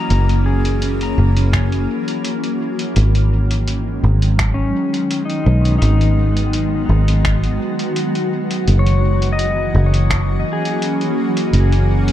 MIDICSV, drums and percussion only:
0, 0, Header, 1, 2, 480
1, 0, Start_track
1, 0, Key_signature, 5, "minor"
1, 0, Tempo, 714286
1, 71, Time_signature, 4, 2, 24, 8
1, 8146, End_track
2, 0, Start_track
2, 0, Title_t, "Drums"
2, 69, Note_on_c, 9, 42, 55
2, 137, Note_off_c, 9, 42, 0
2, 197, Note_on_c, 9, 42, 29
2, 264, Note_off_c, 9, 42, 0
2, 437, Note_on_c, 9, 42, 41
2, 504, Note_off_c, 9, 42, 0
2, 551, Note_on_c, 9, 42, 54
2, 618, Note_off_c, 9, 42, 0
2, 678, Note_on_c, 9, 42, 27
2, 746, Note_off_c, 9, 42, 0
2, 918, Note_on_c, 9, 42, 40
2, 985, Note_off_c, 9, 42, 0
2, 1029, Note_on_c, 9, 36, 95
2, 1031, Note_on_c, 9, 26, 83
2, 1031, Note_on_c, 9, 42, 49
2, 1096, Note_off_c, 9, 36, 0
2, 1098, Note_off_c, 9, 26, 0
2, 1098, Note_off_c, 9, 42, 0
2, 1158, Note_on_c, 9, 42, 29
2, 1225, Note_off_c, 9, 42, 0
2, 1397, Note_on_c, 9, 42, 43
2, 1464, Note_off_c, 9, 42, 0
2, 1509, Note_on_c, 9, 42, 53
2, 1576, Note_off_c, 9, 42, 0
2, 1637, Note_on_c, 9, 42, 28
2, 1704, Note_off_c, 9, 42, 0
2, 1876, Note_on_c, 9, 42, 42
2, 1943, Note_off_c, 9, 42, 0
2, 1989, Note_on_c, 9, 42, 57
2, 2056, Note_off_c, 9, 42, 0
2, 2117, Note_on_c, 9, 42, 31
2, 2184, Note_off_c, 9, 42, 0
2, 2357, Note_on_c, 9, 42, 42
2, 2424, Note_off_c, 9, 42, 0
2, 2470, Note_on_c, 9, 42, 55
2, 2537, Note_off_c, 9, 42, 0
2, 2838, Note_on_c, 9, 42, 43
2, 2905, Note_off_c, 9, 42, 0
2, 2950, Note_on_c, 9, 26, 92
2, 2950, Note_on_c, 9, 36, 99
2, 2950, Note_on_c, 9, 42, 54
2, 3017, Note_off_c, 9, 26, 0
2, 3017, Note_off_c, 9, 36, 0
2, 3017, Note_off_c, 9, 42, 0
2, 3319, Note_on_c, 9, 42, 44
2, 3386, Note_off_c, 9, 42, 0
2, 3432, Note_on_c, 9, 42, 58
2, 3499, Note_off_c, 9, 42, 0
2, 3559, Note_on_c, 9, 42, 28
2, 3626, Note_off_c, 9, 42, 0
2, 3798, Note_on_c, 9, 42, 44
2, 3866, Note_off_c, 9, 42, 0
2, 3910, Note_on_c, 9, 42, 56
2, 3978, Note_off_c, 9, 42, 0
2, 4039, Note_on_c, 9, 42, 30
2, 4106, Note_off_c, 9, 42, 0
2, 4278, Note_on_c, 9, 42, 45
2, 4345, Note_off_c, 9, 42, 0
2, 4391, Note_on_c, 9, 42, 55
2, 4458, Note_off_c, 9, 42, 0
2, 4758, Note_on_c, 9, 42, 42
2, 4826, Note_off_c, 9, 42, 0
2, 4870, Note_on_c, 9, 36, 103
2, 4871, Note_on_c, 9, 26, 94
2, 4871, Note_on_c, 9, 42, 53
2, 4937, Note_off_c, 9, 36, 0
2, 4938, Note_off_c, 9, 26, 0
2, 4938, Note_off_c, 9, 42, 0
2, 4997, Note_on_c, 9, 42, 30
2, 5064, Note_off_c, 9, 42, 0
2, 5237, Note_on_c, 9, 42, 48
2, 5304, Note_off_c, 9, 42, 0
2, 5350, Note_on_c, 9, 42, 54
2, 5417, Note_off_c, 9, 42, 0
2, 5478, Note_on_c, 9, 42, 30
2, 5546, Note_off_c, 9, 42, 0
2, 5716, Note_on_c, 9, 42, 44
2, 5783, Note_off_c, 9, 42, 0
2, 5830, Note_on_c, 9, 42, 57
2, 5897, Note_off_c, 9, 42, 0
2, 5957, Note_on_c, 9, 42, 30
2, 6024, Note_off_c, 9, 42, 0
2, 6196, Note_on_c, 9, 42, 45
2, 6263, Note_off_c, 9, 42, 0
2, 6310, Note_on_c, 9, 42, 56
2, 6377, Note_off_c, 9, 42, 0
2, 6678, Note_on_c, 9, 42, 43
2, 6745, Note_off_c, 9, 42, 0
2, 6789, Note_on_c, 9, 36, 108
2, 6791, Note_on_c, 9, 26, 93
2, 6791, Note_on_c, 9, 42, 54
2, 6856, Note_off_c, 9, 36, 0
2, 6858, Note_off_c, 9, 26, 0
2, 6858, Note_off_c, 9, 42, 0
2, 7159, Note_on_c, 9, 42, 45
2, 7226, Note_off_c, 9, 42, 0
2, 7272, Note_on_c, 9, 42, 53
2, 7339, Note_off_c, 9, 42, 0
2, 7400, Note_on_c, 9, 42, 28
2, 7467, Note_off_c, 9, 42, 0
2, 7640, Note_on_c, 9, 42, 44
2, 7707, Note_off_c, 9, 42, 0
2, 7751, Note_on_c, 9, 42, 54
2, 7819, Note_off_c, 9, 42, 0
2, 7879, Note_on_c, 9, 42, 28
2, 7946, Note_off_c, 9, 42, 0
2, 8118, Note_on_c, 9, 42, 39
2, 8146, Note_off_c, 9, 42, 0
2, 8146, End_track
0, 0, End_of_file